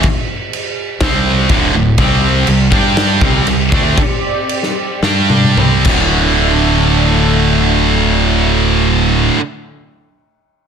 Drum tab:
CC |x---x---x---x---|x---x---x---x---|x---x---------x-|----------------|
SD |--------o-------|--------o-------|-----o--o-------|----------------|
T1 |----------------|----------------|----------oo----|----------------|
T2 |----------------|----------------|------------o---|----------------|
BD |o-------o---o---|o-----o---o---o-|o-------------o-|----------------|

CC |----------------|
SD |----------------|
T1 |----------------|
T2 |----------------|
BD |----------------|